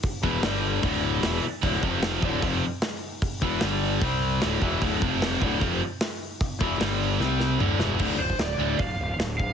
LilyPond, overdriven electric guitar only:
\new Staff \with { instrumentName = "Overdriven electric guitar" } { \clef bass \time 4/4 \key d \minor \tempo 4 = 151 r8 <e, b, e>8 <g, d g>4 <d, a, d>4 <e, b, e>8 r8 | <d, a, d>8 <f, c f>4 <d, a, d>8 <f, c f>8 r4. | r8 <e, b, e>8 <g, d g>4 <c g c'>4 <d, a, d>8 <e, b, e>8 | <d, a, d>8 <f, c f>4 <d, a, d>8 <f, c f>8 r4. |
r8 <e, b, e>8 <g, d g>4 <c g c'>4 <d, a, d>8 <e, b, e>8 | <d, a, d>8 r4 <d, a, d>8 r2 | }